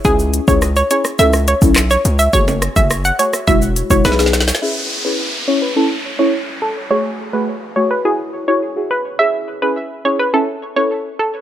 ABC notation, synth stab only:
X:1
M:4/4
L:1/16
Q:1/4=105
K:C#m
V:1 name="Synth stab"
[CEG]3 [CEG] z2 [CEG] z [CEA] z2 [CEA] z4 | [A,FG]3 [A,FG] z2 [A,FG] z [G,EF]3 [G,EF] [B,DG] [B,DG] z2 | [CEG]3 [CEG] z2 [CEG] z [CEA] z2 [CEA] z4 | [A,FG]3 [A,FG] z2 [A,FG] z [EFG]3 [EFG] z [EFG] z2 |
[CEG]3 [CEG] z2 [CEG] z [CEA] z2 [CEA] z4 |]